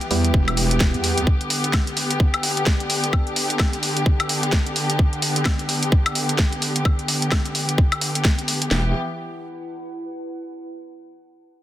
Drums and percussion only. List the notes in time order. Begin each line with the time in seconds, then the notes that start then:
0.01 closed hi-hat
0.11 open hi-hat
0.24 closed hi-hat
0.34 kick
0.48 closed hi-hat, high woodblock
0.57 open hi-hat
0.71 closed hi-hat
0.80 kick, snare
0.94 closed hi-hat
1.04 open hi-hat
1.18 closed hi-hat
1.27 kick
1.41 closed hi-hat
1.50 open hi-hat
1.64 closed hi-hat
1.73 kick, snare, high woodblock
1.87 closed hi-hat
1.97 open hi-hat
2.11 closed hi-hat
2.20 kick
2.34 closed hi-hat, high woodblock
2.43 open hi-hat
2.57 closed hi-hat
2.66 kick, snare
2.80 closed hi-hat
2.90 open hi-hat
3.04 closed hi-hat
3.13 kick, high woodblock
3.27 closed hi-hat
3.36 open hi-hat
3.50 closed hi-hat
3.59 kick, snare, high woodblock
3.73 closed hi-hat
3.83 open hi-hat
3.97 closed hi-hat
4.06 kick
4.20 closed hi-hat, high woodblock
4.29 open hi-hat
4.43 closed hi-hat
4.53 kick, snare
4.67 closed hi-hat
4.76 open hi-hat
4.90 closed hi-hat
4.99 kick
5.13 closed hi-hat
5.22 open hi-hat
5.36 closed hi-hat
5.45 kick, snare, high woodblock
5.59 closed hi-hat
5.69 open hi-hat
5.83 closed hi-hat
5.92 kick
6.06 closed hi-hat, high woodblock
6.15 open hi-hat
6.29 closed hi-hat
6.39 kick, snare
6.53 closed hi-hat
6.62 open hi-hat
6.76 closed hi-hat
6.85 kick, high woodblock
6.99 closed hi-hat
7.08 open hi-hat
7.22 closed hi-hat
7.32 kick, snare, high woodblock
7.46 closed hi-hat
7.55 open hi-hat
7.69 closed hi-hat
7.78 kick
7.92 closed hi-hat, high woodblock
8.01 open hi-hat
8.15 closed hi-hat
8.25 kick, snare
8.39 closed hi-hat
8.48 open hi-hat
8.62 closed hi-hat
8.71 snare